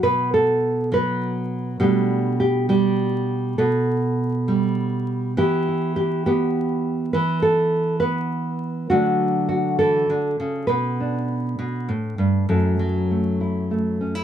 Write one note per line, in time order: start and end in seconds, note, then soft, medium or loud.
0.00 1.79 B2 medium
0.00 1.81 D4 soft
0.00 0.33 B4 loud
0.34 0.93 A4 loud
0.92 1.77 F#3 medium
0.92 1.80 B4 loud
1.80 3.57 B2 medium
1.80 2.69 G3 medium
1.80 5.37 A3 medium
1.80 3.55 D4 medium
1.80 2.39 G4 loud
2.40 2.68 G4 medium
2.69 3.61 G3 medium
2.69 3.58 G4 loud
3.58 5.38 B2 medium
3.58 5.37 A4 medium
4.48 5.37 G3 medium
5.37 7.13 E3 medium
5.37 6.27 B3 medium
5.37 5.68 E4 medium
5.37 5.95 G4 medium
5.68 7.13 E4 soft
5.96 6.25 G4 medium
6.26 7.12 B3 medium
6.26 7.13 G4 loud
7.13 8.91 E3 medium
7.13 7.42 B4 loud
7.42 7.99 A4 loud
8.00 8.87 B3 medium
8.00 8.89 B4 loud
8.90 10.09 D3 medium
8.90 9.79 F#3 medium
8.90 12.49 A3 medium
8.90 10.66 D4 medium
8.90 9.47 F#4 medium
9.49 9.78 F#4 medium
9.79 10.10 E3 medium
9.79 10.67 A4 loud
10.10 10.39 D3 medium
10.40 10.68 C#3 medium
10.67 11.58 B2 medium
10.67 12.49 B4 medium
11.00 12.47 D4 soft
11.59 11.89 B2 medium
11.89 12.18 A2 medium
12.18 12.48 G2 medium
12.49 14.24 F#2 medium
12.49 12.79 F#3 soft
12.49 13.11 A3 soft
12.49 13.40 E4 soft
12.49 14.24 A4 medium
12.79 14.24 F#3 medium
13.11 13.71 A3 soft
13.41 14.00 E4 soft
13.71 14.24 A3 soft
14.01 14.15 C#4 soft
14.15 14.24 E4 soft